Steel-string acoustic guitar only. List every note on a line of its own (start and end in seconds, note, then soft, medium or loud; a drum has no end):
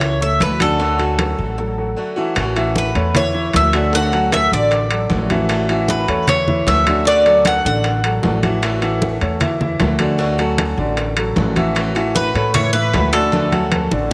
0.00 muted steel-string acoustic guitar stroke medium
0.40 0.59 E3 soft
0.40 0.59 A3 soft
0.40 0.59 C#4 medium
0.40 0.59 F#4 medium
0.60 0.79 A3 medium
0.60 0.79 C#4 medium
0.60 0.79 F#4 medium
0.79 0.98 D3 medium
0.79 0.99 A3 medium
0.79 0.98 C#4 medium
0.79 0.97 F#4 medium
0.98 1.57 A3 medium
0.98 1.57 C#4 medium
0.98 1.57 F#4 medium
1.58 muted steel-string acoustic guitar stroke medium
1.96 2.16 D3 medium
1.96 2.16 A3 soft
1.96 2.15 C#4 medium
1.96 2.15 F#4 medium
2.16 2.35 A3 medium
2.16 2.35 C#4 medium
2.16 2.35 F#4 medium
2.35 2.55 E3 medium
2.35 2.55 A3 medium
2.35 2.55 C#4 medium
2.35 2.55 F#4 medium
2.56 3.15 A3 medium
2.56 3.15 C#4 medium
2.56 3.16 F#4 medium
3.15 muted steel-string acoustic guitar stroke medium
3.55 3.73 E3 soft
3.55 3.73 A3 soft
3.55 3.73 C#4 medium
3.55 3.73 F#4 medium
3.74 3.92 A3 medium
3.74 3.92 C#4 medium
3.74 3.92 F#4 medium
3.93 4.12 D3 medium
3.93 4.12 A3 medium
3.93 4.11 C#4 medium
3.93 4.11 F#4 medium
4.12 4.72 A3 medium
4.12 4.72 C#4 medium
4.12 4.72 F#4 medium
4.72 muted steel-string acoustic guitar stroke medium
5.10 5.29 D3 medium
5.10 5.29 A3 medium
5.10 5.29 C#4 medium
5.10 5.29 F#4 medium
5.30 5.49 A3 medium
5.30 5.49 C#4 medium
5.30 5.49 F#4 medium
5.50 5.68 E3 medium
5.50 5.69 A3 medium
5.50 5.69 C#4 medium
5.50 5.68 F#4 medium
5.70 6.28 A3 medium
5.70 6.28 C#4 medium
5.70 6.29 F#4 medium
6.28 muted steel-string acoustic guitar stroke medium
6.67 6.86 E3 medium
6.67 6.86 A3 medium
6.67 6.86 C#4 medium
6.67 6.86 F#4 medium
6.87 7.06 A3 medium
6.87 7.06 C#4 medium
6.87 7.05 F#4 medium
7.07 7.25 D3 medium
7.07 7.25 A3 medium
7.07 7.25 C#4 medium
7.07 7.24 F#4 medium
7.26 7.84 A3 medium
7.26 7.84 C#4 medium
7.26 7.84 F#4 medium
7.84 muted steel-string acoustic guitar stroke medium
8.23 8.42 D3 soft
8.23 8.42 A3 medium
8.23 8.43 C#4 medium
8.23 8.41 F#4 medium
8.43 8.61 A3 medium
8.43 8.62 C#4 medium
8.43 8.62 F#4 medium
8.62 8.81 E3 medium
8.62 8.81 A3 medium
8.62 8.81 C#4 medium
8.62 8.80 F#4 medium
8.82 9.40 A3 medium
8.82 9.40 C#4 medium
8.82 9.40 F#4 medium
9.40 muted steel-string acoustic guitar stroke medium
9.80 9.99 E3 medium
9.80 9.99 A3 medium
9.80 9.99 C#4 medium
9.80 9.98 F#4 medium
9.99 10.18 A3 medium
9.99 10.18 C#4 medium
9.99 10.18 F#4 medium
10.18 10.38 D3 medium
10.18 10.38 A3 medium
10.18 10.38 C#4 medium
10.18 10.37 F#4 medium
10.38 10.98 A3 medium
10.38 10.98 C#4 medium
10.38 10.98 F#4 medium
10.98 muted steel-string acoustic guitar stroke medium
11.36 11.55 D3 soft
11.36 11.56 A3 medium
11.36 11.55 C#4 medium
11.36 11.54 F#4 medium
11.56 11.74 A3 medium
11.56 11.75 C#4 medium
11.56 11.75 F#4 medium
11.75 11.94 E3 medium
11.75 11.95 A3 medium
11.75 11.94 C#4 medium
11.75 11.94 F#4 medium
11.95 12.54 A3 medium
11.95 12.54 C#4 medium
11.95 12.55 F#4 medium
12.54 muted steel-string acoustic guitar stroke medium
12.93 13.12 E3 medium
12.93 13.12 A3 medium
12.93 13.12 C#4 medium
12.93 13.11 F#4 medium
13.12 13.32 A3 medium
13.12 13.32 C#4 medium
13.12 13.32 F#4 medium
13.32 13.51 D3 medium
13.32 13.52 A3 medium
13.32 13.51 C#4 medium
13.32 13.51 F#4 medium
13.52 14.10 A3 medium
13.52 14.11 C#4 medium
13.52 14.10 F#4 medium